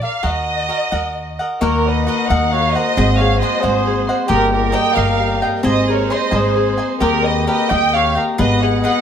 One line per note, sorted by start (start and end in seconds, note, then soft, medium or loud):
0.00 0.03 A#4 soft
0.00 0.22 A#4 soft
0.00 0.23 D5 soft
0.00 0.23 F5 soft
0.04 0.24 F5 medium
0.23 0.68 D#2 medium
0.23 0.68 F#4 medium
0.23 0.69 A#4 medium
0.23 0.70 D#5 medium
0.23 1.40 D#5 medium
0.23 0.70 F#5 medium
0.69 0.91 F#4 medium
0.69 0.91 A#4 medium
0.69 0.90 D#5 medium
0.69 0.91 F#5 soft
0.92 1.37 D#2 medium
0.92 1.60 F#4 soft
0.92 1.40 A#4 soft
0.92 1.40 D#5 medium
0.92 1.39 F#5 medium
1.39 1.60 A#4 soft
1.39 1.60 D#5 soft
1.39 1.61 F#5 soft
1.61 2.06 D#2 medium
1.61 4.29 A#3 medium
1.61 2.96 D#4 medium
1.61 2.06 F#4 medium
1.61 1.88 F#4 medium
1.61 2.96 A#4 medium
1.61 1.84 A#4 medium
1.61 2.07 A#4 medium
1.61 2.08 D#5 medium
1.61 2.95 F#5 medium
1.61 2.08 F#5 medium
1.87 2.07 B4 medium
1.87 2.05 D#5 medium
2.06 2.29 F#4 medium
2.06 2.29 A#4 medium
2.06 2.30 B4 medium
2.06 2.27 D#5 medium
2.06 2.29 D#5 medium
2.06 2.29 F#5 medium
2.27 2.74 D#2 medium
2.27 2.76 F#4 medium
2.27 2.75 A#4 medium
2.27 2.54 D#5 medium
2.27 2.76 D#5 medium
2.27 2.53 F#5 medium
2.27 2.74 F#5 medium
2.52 4.97 F#4 medium
2.52 2.76 C#5 medium
2.52 2.75 F5 medium
2.72 3.19 C5 medium
2.72 3.19 D#5 medium
2.72 2.97 D#5 soft
2.72 2.97 F#5 soft
2.76 2.97 A#4 soft
2.76 4.16 A#5 medium
2.94 3.40 G#1 medium
2.94 4.27 G#3 medium
2.94 5.63 C4 medium
2.94 4.27 F#4 medium
2.94 3.41 G#4 medium
2.94 4.27 C5 medium
2.94 3.42 C5 medium
2.94 3.43 D#5 medium
2.94 3.43 F#5 medium
3.17 3.86 G#4 medium
3.17 3.38 C#5 medium
3.17 3.40 F5 medium
3.39 3.63 G#4 medium
3.39 3.62 C5 medium
3.39 3.61 D#5 medium
3.39 4.07 C6 medium
3.43 3.63 C5 medium
3.43 3.62 D#5 medium
3.43 3.62 F#5 medium
3.60 4.07 G#1 medium
3.60 4.12 G#4 medium
3.60 4.09 G#4 soft
3.60 4.13 C5 medium
3.60 4.09 C5 soft
3.60 4.09 D#5 medium
3.60 4.08 F#5 medium
3.86 5.26 G#4 medium
4.07 4.28 C5 soft
4.07 4.28 D#5 soft
4.07 4.28 F#5 medium
4.07 5.38 C6 medium
4.26 4.73 G1 medium
4.26 7.00 A#3 medium
4.26 4.50 G4 medium
4.26 4.71 G4 medium
4.26 4.72 A#4 medium
4.26 4.52 A#4 medium
4.26 4.73 D#5 medium
4.26 4.73 G5 medium
4.30 5.62 G3 medium
4.30 8.35 D#4 medium
4.30 5.62 A#4 medium
4.51 4.74 G4 medium
4.51 4.73 A#4 medium
4.72 4.95 G4 medium
4.72 4.95 A#4 medium
4.72 4.95 D#5 medium
4.72 4.95 G5 loud
4.72 4.94 G5 medium
4.94 5.40 G1 medium
4.94 5.42 G4 soft
4.94 5.41 A#4 medium
4.94 5.42 A#4 medium
4.94 5.43 D#5 medium
4.94 5.41 F5 medium
4.94 5.41 G5 medium
5.20 5.93 G4 medium
5.41 5.63 A#4 soft
5.41 5.63 D#5 soft
5.41 5.64 G5 medium
5.41 6.81 A#5 medium
5.63 6.08 G#1 medium
5.63 7.00 G#3 medium
5.63 8.45 C4 medium
5.63 6.09 G#4 medium
5.63 6.09 C5 medium
5.63 7.00 C5 medium
5.63 6.12 D#5 medium
5.63 6.10 G#5 medium
5.68 5.92 C5 medium
5.68 5.89 D#5 medium
5.87 6.56 G#4 medium
5.87 6.14 A#4 medium
5.92 6.12 C#5 medium
6.10 6.31 G#4 medium
6.10 6.31 C5 medium
6.10 6.36 C5 medium
6.10 6.30 D#5 medium
6.10 6.34 D#5 medium
6.10 6.30 G#5 medium
6.10 6.79 C6 medium
6.31 6.77 G#1 medium
6.31 6.79 G#4 soft
6.31 6.86 G#4 medium
6.31 6.78 C5 medium
6.31 6.79 D#5 medium
6.31 6.76 G#5 medium
6.37 6.87 C5 medium
6.56 8.01 G#4 medium
6.78 7.01 C5 soft
6.78 7.00 D#5 soft
6.78 7.00 G#5 soft
6.78 8.10 C6 medium
7.00 7.46 D#2 medium
7.00 8.45 A#3 medium
7.00 8.37 A#3 medium
7.00 7.46 G4 medium
7.00 8.37 G4 medium
7.00 7.27 G4 medium
7.00 7.46 A#4 medium
7.00 7.25 A#4 medium
7.00 7.47 D#5 medium
7.00 7.47 G5 medium
7.26 7.47 B4 medium
7.26 7.48 D#5 medium
7.47 7.70 G4 medium
7.47 7.69 A#4 medium
7.47 7.71 B4 medium
7.47 7.69 D#5 medium
7.47 7.70 D#5 medium
7.47 7.68 G5 medium
7.69 8.15 D#2 medium
7.69 8.17 G4 medium
7.69 8.16 A#4 soft
7.69 7.97 D#5 medium
7.69 8.15 D#5 medium
7.69 8.14 G5 medium
7.69 7.95 G5 medium
7.95 8.68 G4 medium
7.95 8.17 C#5 medium
7.95 8.17 F5 medium
8.15 8.38 A#4 soft
8.15 8.38 D#5 soft
8.15 8.38 G5 soft
8.15 8.45 A#5 medium
8.38 8.83 G#1 medium
8.38 9.01 G#3 medium
8.38 9.01 B3 medium
8.38 9.01 F#4 medium
8.38 8.82 G#4 medium
8.38 8.83 B4 medium
8.38 8.62 B4 medium
8.38 9.01 B4 medium
8.38 8.84 D#5 medium
8.38 8.61 D#5 medium
8.38 8.84 F#5 medium
8.61 9.01 G#4 medium
8.61 8.80 D#5 medium
8.61 8.82 F#5 medium
8.80 9.01 G#4 medium
8.80 9.01 D#5 medium
8.80 9.01 F#5 medium
8.80 9.01 B5 medium
8.85 9.01 B4 medium
8.85 9.01 D#5 medium
8.85 9.01 F#5 medium